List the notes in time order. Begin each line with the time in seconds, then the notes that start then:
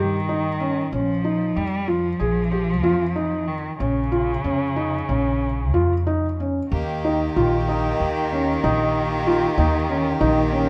Already playing: G2 G4
0.00 D#3
0.29 D#4
0.60 C#4
0.92 A#1 F3 C#4
1.24 D#4
1.56 F2 G3
1.87 F3 F4
2.19 A#1 G#4
2.51 G4
2.83 F2 F4
3.16 D#4
3.48 D#3
3.79 A#1 C#3 C#4
4.12 F4
4.44 F2 C#4
4.76 D#4
5.09 A#1 C#4
5.74 F2 F4
6.07 D#4
6.40 C#4
6.70 D#2 D#3 A#3 G4
7.05 D#4
7.36 A#1 F4
7.68 D#4
8.00 D#2
8.32 C#4
8.64 A#1 D#4
9.27 F4
9.58 D#2 D#4
9.89 C#4
10.21 A#1 D#4
10.52 C#4